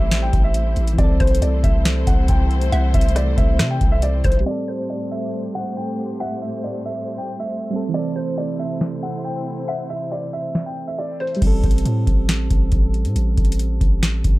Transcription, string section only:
0.00 0.94 A3 medium
0.00 0.94 E4 medium
0.00 0.95 G4 medium
0.00 0.94 C5 loud
0.98 4.43 C3 medium
0.98 4.43 A3 medium
0.98 4.43 E4 medium
0.98 4.43 C5 medium
4.46 7.91 A2 medium
4.46 11.38 A3 medium
4.46 7.91 G4 medium
4.46 7.91 C5 medium
7.94 11.38 C3 medium
7.94 11.38 E4 medium
7.94 11.38 C5 medium

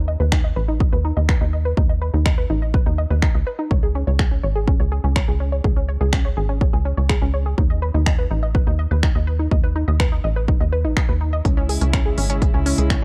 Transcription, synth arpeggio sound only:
0.08 0.11 D#5 medium
0.20 0.26 B4 medium
0.32 0.41 D#4 medium
0.44 0.48 D#5 medium
0.56 0.62 B4 medium
0.68 0.77 D#4 medium
0.81 0.84 D#5 medium
0.93 0.98 B4 medium
1.05 1.13 D#4 medium
1.17 1.20 D#5 medium
1.29 1.35 B4 medium
1.41 1.50 D#4 medium
1.53 1.57 D#5 medium
1.65 1.71 B4 medium
1.77 1.86 D#4 medium
1.89 1.93 D#5 medium
2.01 2.07 B4 medium
2.14 2.22 D#4 medium
2.26 2.29 D#5 medium
2.38 2.44 B4 medium
2.50 2.59 D#4 medium
2.62 2.65 D#5 medium
2.74 2.80 B4 medium
2.86 2.95 D#4 medium
2.98 3.02 D#5 medium
3.10 3.16 B4 medium
3.22 3.31 D#4 medium
3.35 3.38 D#5 medium
3.47 3.52 B4 medium
3.59 3.67 D#4 medium
3.71 3.74 C#5 medium
3.83 3.89 G#4 medium
3.95 4.04 C#4 medium
4.07 4.11 C#5 medium
4.19 4.25 G#4 medium
4.31 4.40 C#4 medium
4.43 4.47 C#5 medium
4.56 4.61 G#4 medium
4.68 4.76 C#4 medium
4.80 4.83 C#5 medium
4.92 4.98 G#4 medium
5.04 5.13 C#4 medium
5.16 5.19 C#5 medium
5.28 5.34 G#4 medium
5.40 5.49 C#4 medium
5.52 5.56 C#5 medium
5.64 5.70 G#4 medium
5.76 5.85 C#4 medium
5.89 5.92 C#5 medium
6.01 6.06 G#4 medium
6.13 6.21 C#4 medium
6.25 6.28 C#5 medium
6.37 6.43 G#4 medium
6.49 6.58 C#4 medium
6.61 6.65 C#5 medium
6.73 6.79 G#4 medium
6.85 6.94 C#4 medium
6.97 7.01 C#5 medium
7.09 7.15 G#4 medium
7.22 7.30 C#4 medium
7.34 7.37 C#5 medium
7.46 7.52 G#4 medium
7.58 7.67 D#4 medium
7.70 7.74 D#5 medium
7.82 7.88 B4 medium
7.94 8.03 D#4 medium
8.06 8.10 D#5 medium
8.18 8.24 B4 medium
8.30 8.39 D#4 medium
8.43 8.46 D#5 medium
8.55 8.60 B4 medium
8.67 8.75 D#4 medium
8.79 8.82 D#5 medium
8.91 8.97 B4 medium
9.03 9.12 D#4 medium
9.15 9.19 D#5 medium
9.27 9.33 B4 medium
9.39 9.48 D#4 medium
9.51 9.55 D#5 medium
9.64 9.69 B4 medium
9.76 9.84 D#4 medium
9.88 9.91 D#5 medium
10.00 10.06 B4 medium
10.12 10.21 D#4 medium
10.24 10.28 D#5 medium
10.36 10.42 B4 medium
10.48 10.57 D#4 medium
10.60 10.64 D#5 medium
10.72 10.78 B4 medium
10.85 10.93 D#4 medium
10.97 11.00 D#5 medium
11.09 11.14 B4 medium
11.21 11.29 D#4 medium
11.33 11.36 D#5 medium
11.45 11.54 C#4 medium
11.57 11.63 C#4 loud
11.69 11.75 G#4 medium
11.81 11.90 C#4 medium
11.93 11.99 C#4 loud
12.06 12.11 G#4 medium
12.18 12.26 C#4 medium
12.30 12.35 C#4 loud
12.42 12.48 G#4 medium
12.54 12.63 C#4 medium
12.66 12.72 C#4 loud
12.78 12.84 G#4 medium
12.90 12.99 C#4 medium

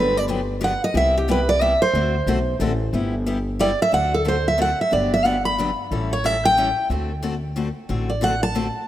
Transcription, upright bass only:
0.00 0.75 G1 medium
0.94 1.73 C2 loud
1.94 2.20 D2 medium
2.26 2.55 B1 medium
2.59 2.88 A1 medium
2.93 3.72 G1 loud
3.93 4.72 D2 medium
4.92 5.71 G1 medium
5.91 6.70 A1 medium
6.90 7.69 D2 loud
7.89 8.69 A1 medium

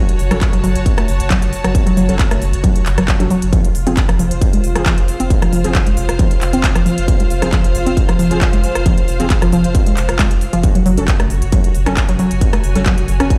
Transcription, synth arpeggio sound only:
0.31 0.36 F#3 medium
0.53 0.56 F#3 loud
0.64 0.69 F#3 loud
0.98 1.05 A3 medium
1.30 1.36 F#3 loud
1.64 1.69 F#3 medium
1.86 1.89 F#3 loud
1.97 2.02 F#3 loud
2.31 2.38 A3 medium
2.64 2.69 F#3 loud
2.98 3.02 F#3 medium
3.20 3.23 F#3 loud
3.31 3.36 F#3 loud
3.53 3.58 F3 loud
3.87 3.89 C4 loud
4.09 4.12 F3 loud
4.19 4.25 F3 loud
4.53 4.60 G#3 medium
4.86 4.91 F3 loud
5.20 5.23 C4 loud
5.42 5.45 F3 loud
5.53 5.58 F3 loud
5.87 5.94 G#3 medium
6.19 6.25 F3 loud
6.53 6.56 C4 loud
6.76 6.78 F3 loud
6.86 6.91 F3 loud
7.20 7.27 G#3 medium
7.53 7.58 F3 loud
7.87 7.89 C4 loud
8.09 8.12 F3 loud
8.19 8.24 F3 loud
8.53 8.60 G#3 medium
8.86 8.91 F3 loud
9.20 9.23 C4 loud
9.42 9.45 F3 loud
9.53 9.58 F3 loud
9.87 9.94 G#3 medium
10.19 10.22 G#3 medium
10.53 10.58 F3 loud
10.75 10.78 F#3 loud
10.86 10.91 F#3 loud
11.20 11.27 A3 medium
11.53 11.58 F#3 loud
11.87 11.89 C#4 loud
12.09 12.12 F#3 loud
12.19 12.25 F#3 loud
12.53 12.60 A3 medium
12.86 12.91 F#3 loud
13.20 13.23 C#4 loud

